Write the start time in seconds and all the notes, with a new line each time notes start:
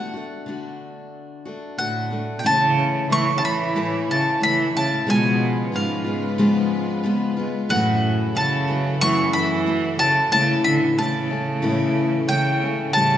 Already playing: D3 A3 D4 F#4 F#5
0.14 A3 D4 F#4
0.46 D3 A3 D4 F#4
1.45 A3 D4 F#4
1.78 A2 D3 A3 D4 F#4 F#5
2.10 A3 D4 F#4
2.39 B2 G5
2.44 A2 C#3 E3 A3 C#4 E4 C#5 A5
3.10 E3 A3 C#4 E4 C#6
3.36 C#3 A5
3.44 E3 B5
3.76 A2 E3 A3 C#4 E4
4.11 C#3 A5
4.41 E3 A3 C#4 E4 B5
4.75 C#3 A3 C#4 E4 A5
5.07 B2 C#3 F3 G#3 B3 F4 B4 G#5
5.72 G#2 F3 G#3 B3 F4 F5
6.04 G#3 B3 F4
6.38 C#3 F3 G#3 B3 F4
7.04 F3 G#3 B3 F4
7.37 G#3 B3 F4
7.69 F#2 A2 C#3 E3 F#3 A3 C#4 E4 F#4 A4 F#5
8.35 C#3 E3 A3 C#4 F#4 A5
8.68 E3 A3 C#4 F#4
9.00 F#2 C#3 E3 A3 C#4 F#4 C#6
9.33 E3 B5
9.66 E3 A3 C#4 F#4
9.98 C#3 E3 A3 C#4 F#4 A5
10.31 A2 C#3 E3 A3 C#4 E4 A5
10.64 D3 B5
10.98 C#3 E3 A3 C#4 E4 A5
11.30 A3 C#4 E4
11.62 A2 E3 A3 C#4 E4
12.28 C#3 E3 A3 C#4 E4 G5
12.62 A3 C#4 E4
12.93 A2 C#3 E3 G3 C#4 A5
12.97 A2 G3 E4 A4